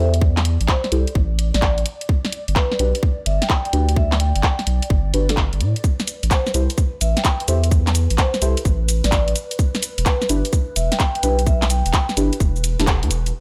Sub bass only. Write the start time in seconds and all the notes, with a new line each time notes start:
0.00 E2
0.60 A1
0.92 C2
1.15 A1
1.54 A1
2.48 G1
2.79 B1
3.26 G1
3.73 D2
4.35 G1
4.67 B1
4.90 G1
5.14 G1
5.53 G1
5.61 A2
6.23 A1
6.54 C2
7.01 A1
7.48 E2
8.10 A1
8.42 C2
8.65 A1
9.04 A1
9.98 E1
10.29 G1
10.76 E1
11.23 B1
11.86 E1
12.17 G1
12.40 E1
12.79 E1
13.03 E2
13.11 E1